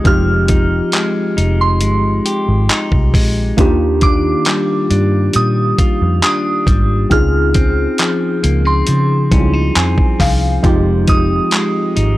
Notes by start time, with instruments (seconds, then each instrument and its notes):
Already playing: clean electric guitar G#3 D#4 G4
0.04 fingered electric bass F1, clean electric guitar F3, synth keys G#3 C4 D#4 F4 G4, synth bell F6, kick, closed hi-hat
0.48 clean electric guitar D#4, kick, closed hi-hat
0.92 clean electric guitar G#3, clap, closed hi-hat
1.37 fingered electric bass F1, clean electric guitar D#4, closed hi-hat
1.61 synth bell C6
1.81 fingered electric bass G1, clean electric guitar G#3, closed hi-hat
2.26 clean electric guitar G4, closed hi-hat
2.48 fingered electric bass G#1
2.69 clean electric guitar D#4, clap, closed hi-hat
2.92 fingered electric bass C2, kick
3.14 fingered electric bass A#1, clean electric guitar G#3, kick, open hi-hat
3.57 fingered electric bass D#2, clean electric guitar D#3, synth keys A#3 D4 D#4 F4 G4, kick, closed hi-hat
4.01 clean electric guitar D4, synth bell D6, kick, closed hi-hat
4.45 clean electric guitar G3, clap, closed hi-hat
4.90 fingered electric bass G2, clean electric guitar D4, closed hi-hat
5.33 fingered electric bass A#2, clean electric guitar G3, synth bell D#6, closed hi-hat
5.78 clean electric guitar F4, kick, closed hi-hat
6.02 fingered electric bass F2
6.23 clean electric guitar D4, synth bell D#6, clap, closed hi-hat
6.67 fingered electric bass G#1, clean electric guitar G3, kick, closed hi-hat
7.10 fingered electric bass C#2, synth keys C4 C#4 D#4 F4 G#4, synth bell F6, kick, closed hi-hat
7.54 clean electric guitar C4, kick, closed hi-hat
7.98 clean electric guitar F3, clap, closed hi-hat
8.43 fingered electric bass C#2, clean electric guitar A#3, closed hi-hat
8.65 clean electric guitar C4, synth bell C6
8.87 fingered electric bass C#3, clean electric guitar F3, closed hi-hat
9.31 fingered electric bass C#2, synth keys G3 C4 C#4 D#4 E4, clean electric guitar C#4, kick, closed hi-hat
9.39 synth keys F4
9.53 clean electric guitar D#4
9.75 fingered electric bass F2, clean electric guitar C4, synth keys G#5, clap, closed hi-hat
9.98 kick
10.19 fingered electric bass C2, clean electric guitar F3, synth keys F5, kick, clap, open hi-hat
10.63 fingered electric bass F1, clean electric guitar F3, synth keys G#3 C4 D#4 F4 G4, kick, closed hi-hat
11.08 clean electric guitar D#4, synth bell D#6, kick, closed hi-hat
11.51 clean electric guitar G#3, clap, closed hi-hat
11.96 fingered electric bass G#1, clean electric guitar D#4, closed hi-hat